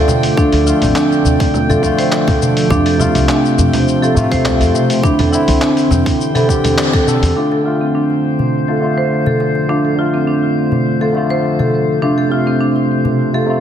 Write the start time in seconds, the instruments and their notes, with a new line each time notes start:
Already playing: tine electric piano D3 A3 F4, analog synth pad F3 A3 D4 A4 D5, marimba A4, synth texture G5
0.08 darbuka tek, low conga, darbuka dum, cabasa
0.23 open hi-hat, darbuka ka, cabasa
0.36 tine electric piano D3 A3 F4, marimba D4, kick, cabasa
0.53 upright bass D2, marimba A4, open hi-hat, darbuka tek
0.65 tine electric piano D3 A3 F4, marimba F4, cabasa
0.82 upright bass A1, marimba C4, open hi-hat, low conga, cabasa
0.96 marimba D4, clap, cabasa
1.12 cabasa
1.25 upright bass D2, darbuka dum, cabasa
1.40 kick, open hi-hat, cabasa
1.54 low conga, cabasa
1.68 upright bass F2, tine electric piano D3 A3 F4, marimba A4, darbuka ka, darbuka dum, cabasa
1.81 upright bass F2, tine electric piano D3 A3, kick, darbuka tek, cabasa
1.85 tine electric piano F4
1.98 marimba C5, open hi-hat, darbuka ka, darbuka tek, cabasa
2.12 clap, cabasa
2.28 marimba A4, kick, open hi-hat, low conga, cabasa
2.42 darbuka ka, darbuka dum, cabasa
2.57 open hi-hat, cabasa
2.69 upright bass F2, tine electric piano C3 A3 F4, marimba D4, kick, cabasa
2.86 marimba A4, open hi-hat, darbuka tek
2.93 analog synth pad C4
2.98 tine electric piano C3 A3 F4, marimba F4, low conga, cabasa
3.15 upright bass C2, marimba C4, open hi-hat, cabasa
3.26 marimba D4, analog synth pad C5, clap, cabasa
3.45 cabasa
3.58 upright bass F2, darbuka dum, cabasa
3.73 open hi-hat, low conga, cabasa
3.88 cabasa
4.01 tine electric piano C3 A3 F4, marimba A4, cabasa
4.14 upright bass A2, tine electric piano C3 A3 F4, cabasa
4.32 upright bass C2, marimba C5, kick, open hi-hat, darbuka dum, cabasa
4.45 clap, low conga, cabasa
4.61 upright bass F2, marimba A4, open hi-hat, darbuka ka, cabasa
4.74 darbuka tek, darbuka dum, cabasa
4.90 open hi-hat, darbuka ka, cabasa
5.02 tine electric piano D3 C4 E4, analog synth pad E3, marimba D4, kick, cabasa
5.19 upright bass E2, marimba A4, open hi-hat, darbuka tek, low conga
5.31 tine electric piano D3 C4 E4, marimba E4, cabasa
5.48 upright bass C2, marimba C4, open hi-hat, cabasa
5.61 marimba D4, clap, cabasa
5.77 analog synth pad D4, open hi-hat, darbuka tek, cabasa
5.90 upright bass E2, darbuka dum, low conga, cabasa
6.06 analog synth pad G4, kick, open hi-hat, cabasa
6.21 cabasa
6.34 tine electric piano D3 C4 E4, marimba A4, open hi-hat, darbuka ka, darbuka dum, cabasa
6.48 tine electric piano D3 C4 G4, kick, darbuka tek, cabasa
6.64 marimba A4, open hi-hat, darbuka ka, darbuka tek, low conga, cabasa
6.78 clap, cabasa
6.93 marimba A4, kick, open hi-hat, cabasa
7.06 tine electric piano D3 C4 A4, marimba A4, darbuka ka, darbuka dum, cabasa
7.22 upright bass E2, open hi-hat, darbuka tek, cabasa
7.36 tine electric piano D3 A3 F4, analog synth pad F3, marimba D4, synth texture C5
7.52 analog synth pad A3, marimba A4, darbuka tek
7.64 tine electric piano D3 A3 F4, marimba F4
7.81 marimba C4
7.95 marimba D4
8.10 darbuka tek
8.39 darbuka dum
8.49 analog synth pad D5
8.60 analog synth pad A4
8.68 tine electric piano D3 A3 F4, marimba A4
8.80 tine electric piano D3 A3
8.84 tine electric piano F4
8.98 marimba C5
9.26 marimba A4, darbuka ka, darbuka dum
9.40 darbuka tek
9.55 darbuka ka
9.68 tine electric piano D3 A3 F4, marimba D4
9.85 marimba A4
9.96 tine electric piano D3 A3 F4, marimba F4
10.14 marimba C4
10.27 marimba D4
10.72 darbuka dum
11.00 tine electric piano D3 A3 F4, marimba A4, darbuka ka
11.13 tine electric piano D3 A3, darbuka tek
11.17 tine electric piano F4
11.30 marimba C5, darbuka ka, darbuka tek
11.59 marimba A4, darbuka dum
12.02 tine electric piano C3 A3 F4, marimba D4
12.18 marimba A4, darbuka tek
12.29 tine electric piano C3 A3 F4, marimba F4
12.47 marimba C4
12.61 marimba D4
12.76 analog synth pad C4, darbuka tek
13.05 analog synth pad C5, darbuka dum
13.33 tine electric piano C3 A3 F4, marimba A4
13.46 tine electric piano C3 A3
13.50 tine electric piano F4